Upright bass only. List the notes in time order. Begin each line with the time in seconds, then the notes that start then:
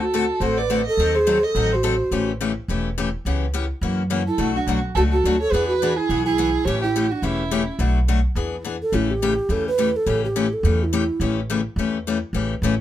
Already playing: D2
0.40 A1
0.97 D#2
1.55 A1
2.11 A1
2.68 E1
3.25 C#2
3.81 F#2
4.38 B1
4.67 B1
4.95 C#2
5.24 D2
5.52 E2
6.09 B1
6.65 A1
7.22 E1
7.79 B1
8.35 E2
8.92 A1
9.49 E2
10.06 A1
10.63 E2
11.20 A1
11.76 E2
12.33 A1
12.62 A1